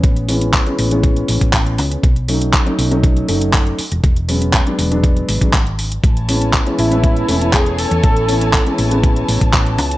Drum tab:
HH |xxoxxxoxxxoxxxox|xxoxxxoxxxoxxxox|xxoxxxoxxxoxxxox|xxoxxxoxxxoxxxox|
CP |----x-------x---|----x-------x---|----x-------x---|----x-------x---|
BD |o---o---o--oo---|o---o---o---o---|o---o---o--oo---|o---o---o---o---|

HH |xxoxxxoxxxoxxxox|
CP |----x-------x---|
BD |o---o---o--oo---|